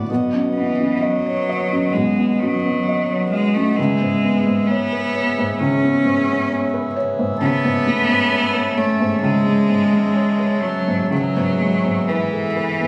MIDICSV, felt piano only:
0, 0, Header, 1, 2, 480
1, 0, Start_track
1, 0, Tempo, 920245
1, 47, Time_signature, 4, 2, 24, 8
1, 2447, Tempo, 906344
1, 4847, Tempo, 955414
1, 6682, End_track
2, 0, Start_track
2, 0, Title_t, "Felt piano"
2, 0, Program_c, 0, 0
2, 0, Control_c, 0, 64, 127
2, 0, Note_on_c, 0, 38, 53
2, 0, Note_on_c, 0, 45, 44
2, 0, Note_on_c, 0, 59, 41
2, 0, Note_on_c, 0, 73, 36
2, 0, Note_on_c, 0, 74, 48
2, 58, Note_off_c, 0, 59, 0
2, 58, Note_off_c, 0, 73, 0
2, 58, Control_c, 0, 64, 0
2, 58, Note_on_c, 0, 35, 56
2, 62, Note_off_c, 0, 74, 0
2, 63, Note_off_c, 0, 38, 0
2, 63, Note_off_c, 0, 45, 0
2, 148, Control_c, 0, 64, 127
2, 178, Note_on_c, 0, 42, 49
2, 300, Note_on_c, 0, 59, 44
2, 368, Note_off_c, 0, 42, 0
2, 417, Note_on_c, 0, 42, 46
2, 489, Note_off_c, 0, 59, 0
2, 533, Note_on_c, 0, 75, 51
2, 608, Note_off_c, 0, 42, 0
2, 657, Note_on_c, 0, 73, 46
2, 726, Note_off_c, 0, 75, 0
2, 775, Note_off_c, 0, 73, 0
2, 778, Note_on_c, 0, 75, 55
2, 899, Note_on_c, 0, 42, 45
2, 967, Note_off_c, 0, 75, 0
2, 997, Note_off_c, 0, 35, 0
2, 1024, Note_on_c, 0, 35, 56
2, 1088, Note_off_c, 0, 42, 0
2, 1144, Note_on_c, 0, 59, 48
2, 1266, Note_on_c, 0, 42, 49
2, 1331, Note_off_c, 0, 59, 0
2, 1384, Note_on_c, 0, 59, 52
2, 1451, Note_off_c, 0, 42, 0
2, 1505, Note_on_c, 0, 75, 52
2, 1570, Note_off_c, 0, 59, 0
2, 1622, Note_on_c, 0, 73, 47
2, 1690, Note_off_c, 0, 75, 0
2, 1736, Note_off_c, 0, 73, 0
2, 1740, Note_on_c, 0, 75, 56
2, 1858, Note_on_c, 0, 42, 52
2, 1926, Note_off_c, 0, 75, 0
2, 1954, Note_off_c, 0, 35, 0
2, 1973, Note_off_c, 0, 42, 0
2, 1977, Note_on_c, 0, 37, 62
2, 1978, Control_c, 0, 64, 0
2, 2060, Control_c, 0, 64, 127
2, 2093, Note_on_c, 0, 44, 47
2, 2215, Note_on_c, 0, 59, 52
2, 2282, Note_off_c, 0, 44, 0
2, 2332, Note_on_c, 0, 44, 47
2, 2402, Note_off_c, 0, 59, 0
2, 2455, Note_on_c, 0, 73, 60
2, 2521, Note_off_c, 0, 44, 0
2, 2571, Note_on_c, 0, 71, 44
2, 2643, Note_off_c, 0, 73, 0
2, 2689, Note_off_c, 0, 71, 0
2, 2691, Note_on_c, 0, 73, 62
2, 2815, Note_on_c, 0, 44, 54
2, 2880, Note_off_c, 0, 73, 0
2, 2908, Note_off_c, 0, 37, 0
2, 2932, Note_on_c, 0, 37, 70
2, 3002, Note_off_c, 0, 44, 0
2, 3057, Note_on_c, 0, 59, 55
2, 3169, Note_on_c, 0, 44, 57
2, 3244, Note_off_c, 0, 59, 0
2, 3290, Note_on_c, 0, 59, 57
2, 3360, Note_off_c, 0, 44, 0
2, 3409, Note_on_c, 0, 73, 66
2, 3480, Note_off_c, 0, 59, 0
2, 3530, Note_on_c, 0, 71, 59
2, 3599, Note_off_c, 0, 73, 0
2, 3648, Note_off_c, 0, 71, 0
2, 3650, Note_on_c, 0, 73, 72
2, 3771, Note_on_c, 0, 44, 62
2, 3839, Note_off_c, 0, 73, 0
2, 3867, Note_off_c, 0, 37, 0
2, 3887, Note_on_c, 0, 37, 65
2, 3888, Note_off_c, 0, 44, 0
2, 3895, Control_c, 0, 64, 0
2, 3990, Control_c, 0, 64, 127
2, 4012, Note_on_c, 0, 44, 63
2, 4132, Note_on_c, 0, 57, 64
2, 4200, Note_off_c, 0, 44, 0
2, 4246, Note_on_c, 0, 44, 62
2, 4320, Note_off_c, 0, 57, 0
2, 4372, Note_on_c, 0, 73, 67
2, 4437, Note_off_c, 0, 44, 0
2, 4485, Note_on_c, 0, 71, 51
2, 4560, Note_off_c, 0, 73, 0
2, 4605, Note_off_c, 0, 71, 0
2, 4610, Note_on_c, 0, 73, 71
2, 4731, Note_on_c, 0, 44, 64
2, 4800, Note_off_c, 0, 73, 0
2, 4826, Note_off_c, 0, 37, 0
2, 4851, Note_on_c, 0, 37, 76
2, 4918, Note_off_c, 0, 44, 0
2, 4968, Note_on_c, 0, 56, 58
2, 5085, Note_on_c, 0, 44, 51
2, 5152, Note_off_c, 0, 56, 0
2, 5203, Note_on_c, 0, 56, 62
2, 5270, Note_off_c, 0, 44, 0
2, 5320, Note_on_c, 0, 73, 65
2, 5389, Note_off_c, 0, 56, 0
2, 5435, Note_on_c, 0, 71, 52
2, 5508, Note_off_c, 0, 73, 0
2, 5553, Note_on_c, 0, 73, 63
2, 5554, Note_off_c, 0, 71, 0
2, 5678, Note_on_c, 0, 44, 56
2, 5747, Note_off_c, 0, 73, 0
2, 5779, Note_off_c, 0, 37, 0
2, 5792, Note_on_c, 0, 37, 60
2, 5798, Note_off_c, 0, 44, 0
2, 5805, Control_c, 0, 64, 0
2, 5902, Control_c, 0, 64, 127
2, 5921, Note_on_c, 0, 44, 55
2, 6043, Note_on_c, 0, 56, 53
2, 6115, Note_off_c, 0, 44, 0
2, 6167, Note_on_c, 0, 44, 51
2, 6237, Note_off_c, 0, 56, 0
2, 6289, Note_on_c, 0, 71, 62
2, 6359, Note_off_c, 0, 44, 0
2, 6410, Note_on_c, 0, 69, 41
2, 6480, Note_off_c, 0, 71, 0
2, 6524, Note_on_c, 0, 71, 55
2, 6528, Note_off_c, 0, 69, 0
2, 6651, Note_on_c, 0, 44, 43
2, 6682, Note_off_c, 0, 37, 0
2, 6682, Note_off_c, 0, 44, 0
2, 6682, Note_off_c, 0, 71, 0
2, 6682, End_track
0, 0, End_of_file